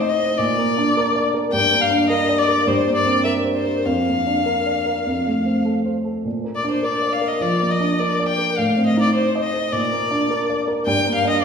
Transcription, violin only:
0.00 0.10 C5 medium
0.09 0.39 D#5 medium
0.37 1.24 D5 medium
1.53 1.83 G5 medium
1.81 2.08 F5 medium
2.09 2.40 D#5 medium
2.38 2.69 D5 medium
2.67 2.95 C5 medium
2.95 3.24 D5 medium
3.24 3.32 E5 medium
3.55 3.87 C5 soft
3.86 5.65 F5 medium
6.55 6.69 D5 soft
6.71 6.85 C5 medium
6.84 7.14 D5 medium
7.12 7.30 F5 medium
7.28 7.43 D#5 soft
7.42 7.72 D5 medium
7.71 8.01 D#5 medium
7.99 8.28 D5 medium
8.28 8.59 G5 medium
8.57 8.86 F5 soft
8.86 9.01 D#5 medium
9.02 9.14 D5 medium
9.15 9.43 C5 medium
9.44 9.74 D#5 medium
9.73 10.58 D5 medium
10.86 11.13 G5 medium
11.15 11.29 F5 medium
11.29 11.42 D#5 medium

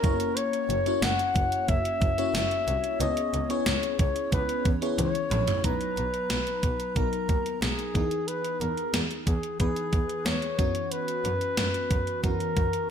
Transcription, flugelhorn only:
0.00 0.39 A#4 loud
0.37 1.04 C#5 loud
1.03 1.71 F#5 loud
1.69 3.00 E5 loud
3.01 3.52 D#5 loud
3.51 3.99 C#5 medium
4.00 4.30 C#5 medium
4.33 4.69 B4 loud
4.99 5.66 C#5 loud
5.65 6.98 B4 loud
6.96 7.61 A#4 medium
7.62 8.29 G#4 medium
8.28 8.62 B4 loud
8.61 9.00 A#4 medium
9.27 9.57 G#4 medium
9.60 10.27 G#4 medium
10.26 10.93 C#5 medium
10.92 12.23 B4 loud
12.24 12.90 A#4 loud

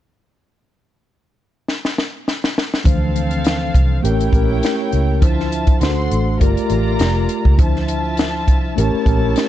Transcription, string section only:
2.84 4.01 C4 medium
2.84 4.01 A4 medium
2.84 4.01 F5 medium
4.03 5.19 E4 medium
4.03 5.19 C#5 medium
4.03 5.19 G5 medium
5.22 5.80 F4 medium
5.22 5.80 E5 medium
5.22 5.80 A5 medium
5.81 6.39 A4 medium
5.81 6.39 F#5 medium
5.81 6.39 C6 medium
6.41 7.56 F4 medium
6.41 7.56 D5 medium
6.41 7.56 A#5 medium
7.60 8.75 F4 medium
7.60 8.75 E5 medium
7.60 8.75 A5 medium
8.77 9.48 E4 medium
8.77 9.48 C#5 medium
8.77 9.48 A5 medium

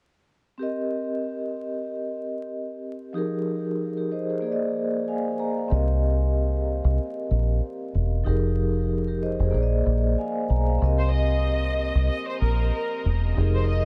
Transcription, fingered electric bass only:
5.71 6.80 C2 loud
6.84 6.97 C2 medium
7.31 7.59 A#1 medium
7.94 8.23 E1 loud
8.26 9.35 F1 loud
9.39 9.52 F1 medium
9.54 9.82 A#1 loud
9.86 10.14 A#1 medium
10.50 10.78 B1 medium
10.82 11.91 C2 loud
11.95 12.08 C2 medium
12.41 12.70 A#1 medium
13.05 13.34 E1 medium
13.37 13.85 F1 loud

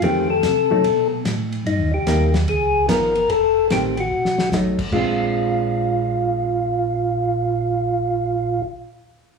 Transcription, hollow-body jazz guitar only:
0.04 0.28 D#3 medium
0.04 0.28 A3 medium
0.04 0.28 C4 medium
0.71 0.83 F#3 medium
0.71 0.83 A3 medium
0.71 0.84 D#4 medium
2.07 2.31 G3 medium
2.07 2.32 A#3 medium
2.07 2.32 D#4 medium
2.88 3.13 F3 medium
2.88 3.13 B3 medium
2.88 3.13 D#4 medium
3.71 3.95 D#3 medium
3.71 3.95 A3 medium
3.71 3.96 C4 medium
4.53 4.77 F#3 soft
4.53 4.77 A3 medium
4.53 4.77 D#4 medium
4.93 8.65 G#3 medium
4.93 8.67 C4 soft
4.93 8.68 D4 medium

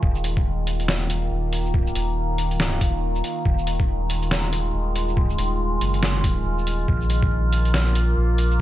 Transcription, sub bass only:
0.03 1.30 D#1 loud
1.31 1.94 D#1 loud
1.96 2.80 D#1 loud
2.81 3.23 D#1 loud
3.45 4.73 D#1 loud
4.74 5.37 D#1 loud
5.38 5.80 D#1 loud
5.81 6.44 F#1 loud
6.45 6.87 D#1 loud
6.88 8.15 A#1 loud
8.17 8.61 A#1 loud

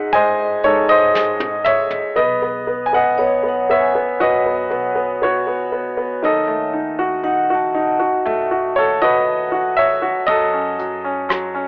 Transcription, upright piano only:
0.00 0.13 G#3 medium
0.00 2.19 D#4 medium
0.00 2.18 G#4 medium
0.00 0.15 C5 medium
0.00 0.14 D#5 medium
0.00 1.65 E5 medium
0.00 0.15 F#5 loud
0.13 1.12 G#3 medium
0.13 0.90 C5 medium
0.13 0.88 D#5 medium
0.13 1.61 G#5 medium
0.64 2.13 D#3 medium
0.64 0.88 A4 medium
0.64 0.90 C#5 medium
0.89 1.62 C5 medium
0.89 1.68 D#5 medium
1.14 2.13 G#3 medium
1.65 2.14 C#5 medium
1.65 2.12 E5 medium
2.16 2.41 B3 medium
2.16 2.83 B4 medium
2.16 2.88 D#5 medium
2.42 2.66 B3 soft
2.67 2.91 B3 soft
2.86 2.93 G#5 medium
2.93 3.17 B3 soft
2.93 3.66 D#5 medium
2.93 3.72 F#5 medium
3.19 3.42 B3 soft
3.43 3.68 B3 soft
3.70 3.94 B3 soft
3.70 4.18 C#5 medium
3.70 4.22 E5 medium
3.95 4.45 B3 soft
4.20 5.23 F#4 medium
4.20 5.19 B4 medium
4.20 5.25 D#5 medium
4.46 4.69 B3 soft
4.70 4.94 B3 soft
4.95 5.20 B3 soft
5.22 5.45 B3 soft
5.22 6.20 F#4 medium
5.22 6.26 C#5 medium
5.47 5.71 B3 soft
5.72 5.96 B3 soft
5.97 6.22 B3 soft
6.22 10.24 D#3 medium
6.22 7.21 A4 medium
6.22 7.21 D#5 medium
6.48 8.24 A3 soft
6.73 7.22 D#4 soft
6.99 7.49 F#4 medium
7.23 7.73 D#4 soft
7.50 7.98 F#4 medium
7.74 9.73 D#4 medium
7.99 8.50 F#4 soft
8.25 10.24 A3 medium
8.51 9.00 F#4 soft
8.76 9.01 A4 medium
8.76 9.02 C#5 medium
9.02 9.50 F#4 medium
9.02 9.75 B4 medium
9.02 9.74 D#5 medium
9.52 10.01 F#4 soft
9.77 10.25 C#5 medium
9.77 10.29 E5 medium
10.02 10.27 F#4 medium
10.27 10.77 F#3 medium
10.27 11.68 A4 medium
10.27 11.68 D#5 medium
10.53 11.03 C#4 soft
10.79 11.27 F#3 soft
11.04 11.53 C#4 soft
11.29 11.68 F#3 medium
11.54 11.68 C#4 medium

